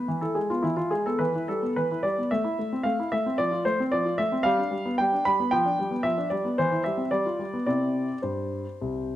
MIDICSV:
0, 0, Header, 1, 2, 480
1, 0, Start_track
1, 0, Key_signature, 0, "major"
1, 0, Tempo, 551978
1, 1044, Time_signature, 4, 2, 24, 8
1, 2467, Tempo, 535236
1, 6307, Tempo, 566572
1, 8035, End_track
2, 0, Start_track
2, 0, Title_t, "Grand piano"
2, 0, Program_c, 0, 0
2, 0, Note_on_c, 0, 71, 47
2, 72, Note_on_c, 0, 52, 41
2, 146, Note_off_c, 0, 71, 0
2, 185, Note_on_c, 0, 69, 47
2, 188, Note_off_c, 0, 52, 0
2, 189, Note_on_c, 0, 64, 30
2, 302, Note_on_c, 0, 68, 46
2, 305, Note_on_c, 0, 56, 30
2, 309, Note_off_c, 0, 69, 0
2, 317, Note_off_c, 0, 64, 0
2, 429, Note_off_c, 0, 68, 0
2, 434, Note_on_c, 0, 65, 45
2, 437, Note_off_c, 0, 56, 0
2, 443, Note_on_c, 0, 59, 30
2, 544, Note_on_c, 0, 64, 51
2, 553, Note_on_c, 0, 52, 32
2, 556, Note_off_c, 0, 65, 0
2, 567, Note_off_c, 0, 59, 0
2, 654, Note_off_c, 0, 64, 0
2, 665, Note_on_c, 0, 65, 48
2, 667, Note_on_c, 0, 64, 30
2, 673, Note_off_c, 0, 52, 0
2, 788, Note_on_c, 0, 68, 50
2, 791, Note_on_c, 0, 56, 30
2, 794, Note_off_c, 0, 65, 0
2, 801, Note_off_c, 0, 64, 0
2, 917, Note_off_c, 0, 68, 0
2, 921, Note_on_c, 0, 69, 51
2, 924, Note_off_c, 0, 56, 0
2, 924, Note_on_c, 0, 59, 31
2, 1032, Note_on_c, 0, 71, 56
2, 1039, Note_on_c, 0, 52, 39
2, 1042, Note_off_c, 0, 69, 0
2, 1044, Note_off_c, 0, 59, 0
2, 1157, Note_off_c, 0, 52, 0
2, 1179, Note_on_c, 0, 64, 32
2, 1277, Note_off_c, 0, 71, 0
2, 1289, Note_on_c, 0, 69, 54
2, 1292, Note_on_c, 0, 55, 32
2, 1297, Note_off_c, 0, 64, 0
2, 1413, Note_off_c, 0, 55, 0
2, 1415, Note_on_c, 0, 59, 30
2, 1500, Note_off_c, 0, 69, 0
2, 1533, Note_off_c, 0, 59, 0
2, 1534, Note_on_c, 0, 71, 54
2, 1540, Note_on_c, 0, 52, 34
2, 1646, Note_off_c, 0, 52, 0
2, 1666, Note_on_c, 0, 64, 31
2, 1764, Note_on_c, 0, 74, 59
2, 1765, Note_off_c, 0, 71, 0
2, 1772, Note_on_c, 0, 55, 34
2, 1778, Note_off_c, 0, 64, 0
2, 1890, Note_off_c, 0, 55, 0
2, 1899, Note_on_c, 0, 59, 30
2, 1999, Note_off_c, 0, 74, 0
2, 2007, Note_off_c, 0, 59, 0
2, 2009, Note_on_c, 0, 76, 60
2, 2015, Note_on_c, 0, 57, 46
2, 2120, Note_off_c, 0, 57, 0
2, 2125, Note_on_c, 0, 64, 35
2, 2243, Note_off_c, 0, 64, 0
2, 2250, Note_on_c, 0, 57, 33
2, 2364, Note_off_c, 0, 57, 0
2, 2370, Note_on_c, 0, 60, 36
2, 2465, Note_on_c, 0, 77, 60
2, 2473, Note_off_c, 0, 76, 0
2, 2478, Note_on_c, 0, 57, 40
2, 2484, Note_off_c, 0, 60, 0
2, 2590, Note_off_c, 0, 57, 0
2, 2610, Note_on_c, 0, 64, 36
2, 2684, Note_off_c, 0, 77, 0
2, 2719, Note_on_c, 0, 76, 67
2, 2725, Note_on_c, 0, 57, 37
2, 2726, Note_off_c, 0, 64, 0
2, 2845, Note_off_c, 0, 57, 0
2, 2848, Note_on_c, 0, 60, 36
2, 2932, Note_off_c, 0, 76, 0
2, 2954, Note_on_c, 0, 74, 74
2, 2960, Note_off_c, 0, 60, 0
2, 2960, Note_on_c, 0, 53, 44
2, 3073, Note_off_c, 0, 53, 0
2, 3074, Note_on_c, 0, 65, 38
2, 3171, Note_off_c, 0, 74, 0
2, 3197, Note_on_c, 0, 72, 64
2, 3201, Note_off_c, 0, 65, 0
2, 3201, Note_on_c, 0, 57, 35
2, 3325, Note_off_c, 0, 57, 0
2, 3330, Note_on_c, 0, 60, 39
2, 3342, Note_off_c, 0, 72, 0
2, 3435, Note_on_c, 0, 74, 69
2, 3447, Note_on_c, 0, 53, 39
2, 3451, Note_off_c, 0, 60, 0
2, 3559, Note_on_c, 0, 65, 36
2, 3561, Note_off_c, 0, 53, 0
2, 3671, Note_on_c, 0, 76, 66
2, 3680, Note_off_c, 0, 74, 0
2, 3681, Note_on_c, 0, 57, 38
2, 3687, Note_off_c, 0, 65, 0
2, 3799, Note_on_c, 0, 60, 39
2, 3808, Note_off_c, 0, 57, 0
2, 3897, Note_on_c, 0, 77, 78
2, 3909, Note_on_c, 0, 55, 55
2, 3918, Note_off_c, 0, 76, 0
2, 3921, Note_off_c, 0, 60, 0
2, 4032, Note_off_c, 0, 55, 0
2, 4034, Note_on_c, 0, 62, 38
2, 4146, Note_on_c, 0, 55, 35
2, 4164, Note_off_c, 0, 62, 0
2, 4278, Note_on_c, 0, 59, 38
2, 4280, Note_off_c, 0, 55, 0
2, 4352, Note_off_c, 0, 77, 0
2, 4389, Note_on_c, 0, 79, 72
2, 4404, Note_off_c, 0, 59, 0
2, 4407, Note_on_c, 0, 55, 43
2, 4519, Note_off_c, 0, 55, 0
2, 4522, Note_on_c, 0, 62, 39
2, 4631, Note_off_c, 0, 79, 0
2, 4634, Note_on_c, 0, 83, 73
2, 4639, Note_on_c, 0, 55, 39
2, 4644, Note_off_c, 0, 62, 0
2, 4761, Note_off_c, 0, 55, 0
2, 4763, Note_on_c, 0, 59, 40
2, 4865, Note_on_c, 0, 79, 76
2, 4870, Note_off_c, 0, 83, 0
2, 4876, Note_on_c, 0, 53, 50
2, 4877, Note_off_c, 0, 59, 0
2, 4989, Note_off_c, 0, 53, 0
2, 4996, Note_on_c, 0, 62, 40
2, 5117, Note_on_c, 0, 55, 38
2, 5118, Note_off_c, 0, 62, 0
2, 5222, Note_on_c, 0, 59, 35
2, 5238, Note_off_c, 0, 55, 0
2, 5308, Note_off_c, 0, 79, 0
2, 5332, Note_on_c, 0, 76, 69
2, 5335, Note_on_c, 0, 53, 40
2, 5350, Note_off_c, 0, 59, 0
2, 5456, Note_off_c, 0, 53, 0
2, 5462, Note_on_c, 0, 62, 33
2, 5552, Note_off_c, 0, 76, 0
2, 5573, Note_on_c, 0, 74, 55
2, 5583, Note_on_c, 0, 55, 34
2, 5588, Note_off_c, 0, 62, 0
2, 5705, Note_on_c, 0, 59, 37
2, 5708, Note_off_c, 0, 55, 0
2, 5817, Note_off_c, 0, 74, 0
2, 5824, Note_off_c, 0, 59, 0
2, 5825, Note_on_c, 0, 72, 69
2, 5834, Note_on_c, 0, 52, 47
2, 5944, Note_off_c, 0, 52, 0
2, 5946, Note_on_c, 0, 64, 34
2, 6040, Note_off_c, 0, 72, 0
2, 6056, Note_on_c, 0, 76, 58
2, 6069, Note_on_c, 0, 55, 33
2, 6070, Note_off_c, 0, 64, 0
2, 6176, Note_on_c, 0, 60, 32
2, 6193, Note_off_c, 0, 55, 0
2, 6277, Note_off_c, 0, 76, 0
2, 6298, Note_on_c, 0, 74, 57
2, 6302, Note_off_c, 0, 60, 0
2, 6305, Note_on_c, 0, 55, 41
2, 6418, Note_off_c, 0, 55, 0
2, 6425, Note_on_c, 0, 65, 30
2, 6538, Note_on_c, 0, 55, 30
2, 6547, Note_off_c, 0, 65, 0
2, 6659, Note_on_c, 0, 59, 31
2, 6664, Note_off_c, 0, 55, 0
2, 6757, Note_off_c, 0, 74, 0
2, 6769, Note_on_c, 0, 74, 60
2, 6773, Note_on_c, 0, 48, 33
2, 6776, Note_on_c, 0, 64, 27
2, 6777, Note_on_c, 0, 60, 28
2, 6779, Note_off_c, 0, 59, 0
2, 7110, Note_off_c, 0, 48, 0
2, 7160, Note_off_c, 0, 60, 0
2, 7160, Note_off_c, 0, 64, 0
2, 7218, Note_off_c, 0, 74, 0
2, 7243, Note_on_c, 0, 72, 39
2, 7251, Note_on_c, 0, 43, 33
2, 7593, Note_off_c, 0, 43, 0
2, 7743, Note_on_c, 0, 36, 34
2, 8035, Note_off_c, 0, 36, 0
2, 8035, Note_off_c, 0, 72, 0
2, 8035, End_track
0, 0, End_of_file